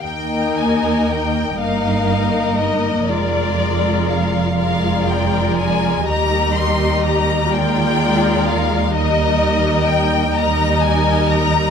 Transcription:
X:1
M:6/8
L:1/8
Q:3/8=41
K:Eb
V:1 name="Violin section"
g a g f2 e | d2 f f g a | b c' b g2 f | e2 g b a b |]
V:2 name="Violin section"
[Be]3 [Be]3 | [Bd]3 [Bd]3 | [Be]3 [Bd]3 | [Be]3 [Be]3 |]
V:3 name="Viola section"
[B,E]3 [B,E]3 | [A,F]3 [A,F]3 | [G,G]3 [A,F]3 | [G,E]3 [G,E]3 |]
V:4 name="Cello section" clef=bass
E,,3 G,,3 | F,,6 | E,,6- | E,,6 |]
V:5 name="Double bass section" clef=bass
E,,3 G,,,3 | F,,,6 | E,,6- | E,,6 |]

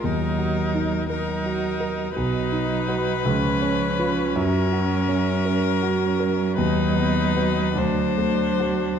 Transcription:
X:1
M:6/8
L:1/8
Q:3/8=55
K:Ebm
V:1 name="Violin"
B3 B3 | [K:F#] B6 | A6 | B3 =c3 |]
V:2 name="Grand piano"
E,, G E B G B | [K:F#] B,,, D [FB] C,, C [EB] | F,, F C A F A | D,, B, [FB] =D,, =A, [F=c] |]
V:3 name="Viola"
E3 E3 | [K:F#] D3 C3- | C6 | D3 =D3 |]
V:4 name="Cello" clef=bass
G,3 G,3 | [K:F#] F,3 E,3 | F,6- | F,6 |]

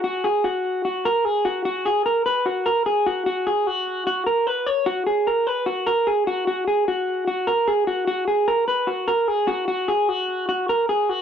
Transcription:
X:1
M:4/4
L:1/8
Q:1/4=149
K:F#mix
V:1 name="Clean electric guitar"
F G F2 F A G F | F G A B F A G F | F G F2 F A B c | F G A B F A G F |
F G F2 F A G F | F G A B F A G F | F G F2 F A G F |]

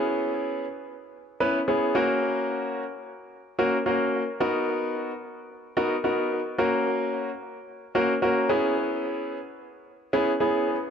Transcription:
X:1
M:4/4
L:1/8
Q:1/4=110
K:F#mix
V:1 name="Grand piano"
[B,CEG]2 z3 [B,CEB] [B,CEG] [A,CFA]- | [A,CFA]2 z3 [A,CFA] [A,CFA] z | [B,DFA]3 z2 [B,DFA] [B,DFA] z | [A,CFA]3 z2 [A,CFA] [A,CFA] [B,CEG]- |
[B,CEG]2 z3 [B,CEG] [B,CEG] z |]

